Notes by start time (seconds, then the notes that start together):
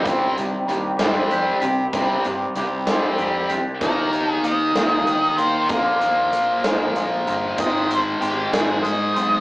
0.04 C2 C3 D#3 G3 C4 D4 G4, kick, closed hi-hat
0.35 C2 C3 G3 D4 G4, closed hi-hat
0.66 D#2 C3 D#3 G3 D4 G4, closed hi-hat
0.98 G2 C3 G3 C4 D4 G4, snare, closed hi-hat
1.29 F2 D#3 G3 D4 G4, closed hi-hat
1.61 C3 G3 D4 G4, closed hi-hat
1.93 C2 C3 D#3 G3 C4 D4 G4, kick, closed hi-hat
2.24 G2 C3 G3 D4 G4, closed hi-hat
2.55 C2 C3 D#3 G3 D4 G4, closed hi-hat
2.86 C3 G3 C4 D4 G4, snare, closed hi-hat
3.18 F2 D#3 G3 D4 G4, closed hi-hat
3.49 C3 G3 D4 G4, closed hi-hat
3.81 D#2 D#3 A#3 D#4 A#4, kick, closed hi-hat
4.13 D#3, closed hi-hat
4.31 G#4
4.44 D#2 D#3 A#3 D#5, closed hi-hat
4.75 D#2 D#3 A#3, snare, closed hi-hat
5.06 D#3 A#3, closed hi-hat
5.38 D#3 A#3 C5, closed hi-hat
5.69 A#1 A#2 D3 F3 A#3 A#4, kick, closed hi-hat
6.01 D#2 A#2, closed hi-hat
6.33 A#1 A#2 D3, closed hi-hat
6.64 A#1 A#2 D3, snare, closed hi-hat
6.96 A#1 A#2 D3, closed hi-hat
7.27 G1 A#2 D3, closed hi-hat
7.58 G#1 G#2 D#3 G#3 C4 D#4 D#5, kick, closed hi-hat
7.90 G#3 C4 C5, closed hi-hat
8.21 G#1 G#3 C4 G4, closed hi-hat
8.52 G#1 G#3 C4 G#4, snare, closed hi-hat
8.83 G#2 G#3 C4 D#5, closed hi-hat
9.16 B1 G#3 C4, closed hi-hat